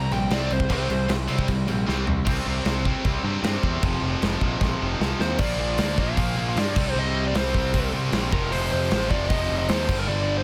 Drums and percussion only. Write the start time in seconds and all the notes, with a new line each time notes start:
0.11 crash
0.31 snare, crash
0.50 crash
0.60 kick
0.70 kick, crash
0.90 crash
1.09 snare, crash
1.28 crash
1.39 kick
1.48 kick, crash
1.68 crash
1.89 snare
2.07 floor tom
2.27 kick, crash
2.65 snare, crash
2.85 kick
3.05 kick, crash
3.44 snare, crash
3.63 kick
3.83 kick, crash
4.22 snare, crash
4.41 kick
4.61 kick, snare
5.01 snare
5.20 snare
5.39 kick, crash
5.78 snare, open hi-hat
5.98 kick
6.17 kick, open hi-hat
6.57 snare, open hi-hat
6.76 kick, crash
7.35 snare, open hi-hat
7.54 kick
7.74 kick, open hi-hat
8.12 snare, open hi-hat
8.32 kick
8.52 open hi-hat
8.91 snare, open hi-hat
9.11 kick
9.30 kick, open hi-hat
9.69 snare, open hi-hat
9.89 kick, crash